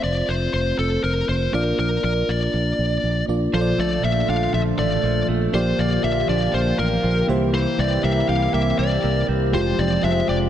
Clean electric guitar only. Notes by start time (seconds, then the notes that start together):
3.53 F3
3.78 A3
4.04 F3
4.29 D4
4.54 F3
4.79 A3
5.04 F3
5.29 A3
5.54 F3
5.79 A#3
6.04 F3
6.29 D4
6.54 F3
6.79 A#3
7.03 F3
7.28 E3
7.54 E3
7.78 C4
8.04 A#3
8.29 G4
8.54 A#3
8.79 C4
9.04 A#3
9.28 C4
9.53 F3
9.79 C4
10.04 G#3
10.28 G4